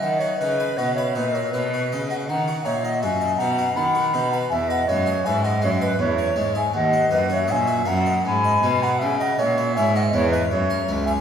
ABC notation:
X:1
M:3/4
L:1/16
Q:1/4=80
K:B
V:1 name="Flute"
f e d2 f e d c d3 f | a2 e f g2 a2 b3 a | g f e2 g f e d e3 g | f2 d e g2 a2 b3 a |
g f e2 g f e d e3 g |]
V:2 name="Flute"
d c B2 d c B A B3 d | f2 c d e2 f2 f3 f | e d c2 e d c B c3 e | d2 B c e2 f2 g3 f |
e d c2 e d c B c3 e |]
V:3 name="Harpsichord"
z F D B F B D F E F d F | z F D d F d D F z F D B | z B G, G B G G, B z c G, G | z d A, F d F A, d z d G, F |
z c G, E c E G, c z A C c |]
V:4 name="Harpsichord" clef=bass
D,2 C,2 B,,2 A,,2 B,,2 C,2 | D,2 A,,2 F,,2 B,,2 D,2 B,,2 | E,,2 F,,2 G,,2 F,,2 E,,2 G,,2 | D,,2 F,,2 A,,2 F,,2 G,,2 B,,2 |
C,2 A,,2 G,,2 E,,2 F,,2 C,,2 |]
V:5 name="Cello" clef=bass
D,2 C,2 B,,2 A,,2 B,,2 C,2 | D,2 A,,2 F,,2 B,,2 D,2 B,,2 | E,,2 F,,2 G,,2 F,,2 E,,2 G,,2 | D,,2 F,,2 A,,2 F,,2 G,,2 B,,2 |
C,2 A,,2 G,,2 E,,2 F,,2 C,,2 |]